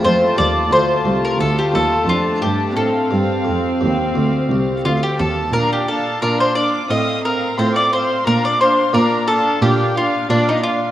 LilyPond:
<<
  \new Staff \with { instrumentName = "Violin section" } { \time 4/4 \key bes \major \tempo 4 = 88 f'4 f'2 d'4 | c'2. f''16 g''16 a''8 | bes''16 g''16 a''8 bes''16 c'''16 d'''8 ees'''8 bes''8 c'''16 d'''16 c'''8 | bes''16 d'''16 c'''8 bes''8 a''8 g''8 f''8 d''16 ees''16 f''8 | }
  \new Staff \with { instrumentName = "Violin section" } { \time 4/4 \key bes \major a''2 a''2 | f''2.~ f''8 r8 | f''8 f''8 f''8 f''8 f''8 f''8 f''8 f''8 | f''8 f''8 f''8 f''8 f''8 f''8 f''8 f''8 | }
  \new Staff \with { instrumentName = "Mandolin" } { \time 4/4 \key bes \major c''8 d''8 c''8. bes'16 a'16 g'16 a'8 f'8 g'8 | a'2. f'16 g'16 a'8 | bes'16 g'16 a'8 bes'16 c''16 d''8 ees''8 bes'8 c''16 d''16 c''8 | bes'16 d''16 c''8 bes'8 a'8 g'8 f'8 d'16 ees'16 f'8 | }
  \new Staff \with { instrumentName = "Viola section" } { \time 4/4 \key bes \major a4 a2. | c'2.~ c'8 r8 | d'8 d'8 d'8 d'8 c'8 c'8 c'8 c'8 | d'8 d'8 d'8 d'8 d'8 d'8 d'8 d'8 | }
  \new Staff \with { instrumentName = "Harpsichord" } { \time 4/4 \key bes \major <c' f'>1~ | <c' f'>1 | r4 <d' f'>4 r4 <c' f'>4 | r4 <bes d' f'>4 <bes d' f'>4 <bes d' f'>4 | }
  \new Staff \with { instrumentName = "Harpsichord" } { \clef bass \time 4/4 \key bes \major f,8 ees,8 d,8 c,8 d,8 ees,8 f,8 g,8 | a,8 g,8 f,8 ees,8 d,8 c,8 d,8 ees,8 | bes,4 bes,4 a,4 a,4 | bes,4 bes,4 bes,4 bes,4 | }
  \new Staff \with { instrumentName = "Cello section" } { \clef bass \time 4/4 \key bes \major f,8 ees,8 d,8 c,8 d,8 ees,8 f,8 g,8 | a,8 g,8 f,8 ees,8 d,8 c,8 d,8 ees,8 | bes,4 bes,4 a,4 a,4 | bes,4 bes,4 bes,4 bes,4 | }
>>